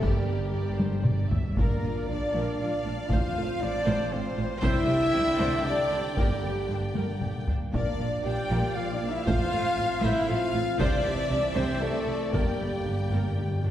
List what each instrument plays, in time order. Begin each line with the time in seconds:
Already playing: trombone section G3
0.01 double bass section G1, cello section G2, trombone section D3, french horn section G3, violin section G4, flute G4, trumpet section A#4, viola section A#4 D5, taiko
0.31 timpani G2
0.40 timpani G2
0.47 timpani G2
0.54 timpani G2, viola section D5
0.62 timpani G2
0.69 timpani G2
0.77 timpani G2, viola section C5, taiko high
0.84 timpani G2
0.92 timpani G2
1.00 timpani G2
1.05 timpani G2, viola section D5, taiko mid
1.16 timpani G2
1.23 timpani G2
1.31 timpani G2, viola section E5, taiko low
1.37 timpani G2
1.47 timpani G2
1.56 double bass section A#1, cello section A#2, trombone section F3 D4, french horn section A#3, flute A#4, trumpet section A#4, violin section A#4 F5, viola section A#4 D5, taiko
1.82 double bass section A#1, cello section A#2, viola section F4
2.07 double bass section A#1, cello section A#2, french horn section D4, viola section D4, flute D5, trumpet section D5, violin section D5
2.34 double bass section A#1, cello section A#2, viola section A#4
2.58 double bass section A#1, cello section A#2, french horn section D4, viola section F4, flute D5, trumpet section D5, violin section D5
2.86 double bass section A#1, cello section A#2, viola section D4
3.08 double bass section A1, cello section A2, trombone section C4, french horn section F4, viola section C5, flute F5, trumpet section F5, taiko
3.12 violin section F5
3.36 double bass section A1, cello section A2, viola section A4
3.60 double bass section A1, cello section A2, french horn section D4, viola section F4, flute D5, violin section D5, trumpet section D5
3.87 double bass section A1, cello section A2, viola section C5
4.11 double bass section A1, cello section A2, french horn section C4, viola section A4, flute C5, trumpet section C5, violin section C5
4.37 double bass section A1, cello section A2, viola section F4
4.63 double bass section C2, cello section C3, trombone section D3, french horn section E4, viola section C5 D5, flute E5, trumpet section E5, violin section E5 G5, taiko
4.88 double bass section C2, cello section C3, viola section G4
5.14 double bass section C2, cello section C3, viola section E4
5.39 double bass section C2, cello section C3, viola section C5
5.64 double bass section C2, cello section C3, french horn section D4, viola section G4, flute D5, trumpet section D5, violin section D5
5.91 double bass section C2, cello section C3, viola section E4
6.16 double bass section G1, cello section G2, french horn section G3, trombone section A#3, violin section G4, trumpet section G4, flute G4, viola section A#4, taiko
6.43 double bass section G1, cello section G2, viola section G4
6.70 double bass section G1, cello section G2, viola section D4
6.95 double bass section G1, cello section G2, viola section A#4, taiko high
7.21 double bass section G1, cello section G2, viola section G4, taiko mid
7.47 double bass section G1, cello section G2, viola section D4, taiko low
7.72 double bass section A#1, cello section A#2, trombone section F3, french horn section D4, viola section A#4 D5, flute D5, trumpet section D5, violin section D5 F5, taiko
7.99 double bass section A#1, cello section A#2, viola section F4
8.24 double bass section A#1, cello section A#2, viola section D4, french horn section G4, trumpet section G5, flute G5, violin section G5
8.50 double bass section A#1, cello section A#2, viola section A#4
8.75 double bass section A#1, cello section A#2, french horn section F4, viola section F4, flute F5, trumpet section F5, violin section F5
8.93 french horn section D4, flute D5, trumpet section D5, violin section D5
9.02 double bass section A#1, cello section A#2, viola section D4
9.09 french horn section E4, trumpet section E5, violin section E5, flute E5
9.26 double bass section A1, cello section A2, trombone section C4, french horn section F4, viola section C5, flute F5, trumpet section F5, violin section F5, taiko
9.53 double bass section A1, cello section A2, viola section A4
9.78 double bass section A1, cello section A2, viola section F4
10.02 double bass section A1, cello section A2, french horn section E4, viola section C5, violin section E5, trumpet section E5, flute E5
10.28 double bass section A1, cello section A2, french horn section F4, viola section A4, trumpet section F5, flute F5, violin section F5
10.53 double bass section A1, cello section A2, viola section F4
10.78 double bass section C2, cello section C3, trombone section E3, french horn section D4, viola section C5 D5, trumpet section D5, violin section D5 E5, flute D5, taiko
11.04 double bass section C2, cello section C3, viola section G4
11.30 double bass section C2, cello section C3, viola section E4
11.55 double bass section C2, cello section C3, french horn section C4, trumpet section C5, violin section C5, viola section C5, flute C5
11.80 double bass section C2, cello section C3, french horn section A3, viola section G4, flute A4, trumpet section A4, violin section A4
12.07 double bass section C2, cello section C3, viola section E4
12.32 double bass section G1, cello section G2, timpani G2, trombone section D3 A#3, french horn section G3, flute G4, trumpet section G4, violin section G4 G5, viola section A#4, taiko
12.40 timpani G2
12.55 timpani G2
12.59 double bass section G1, cello section G2, timpani G2, viola section G4
12.71 timpani G2
12.79 timpani G2
12.85 double bass section G1, timpani G2, cello section G2, viola section D4
12.94 timpani G2
13.02 timpani G2
13.10 double bass section G1, timpani G2, cello section G2, viola section A#4
13.17 timpani G2
13.25 timpani G2
13.32 timpani G2
13.37 double bass section G1, cello section G2, timpani G2, viola section G4
13.48 timpani G2
13.56 timpani G2
13.64 double bass section G1, timpani G2, cello section G2, viola section D4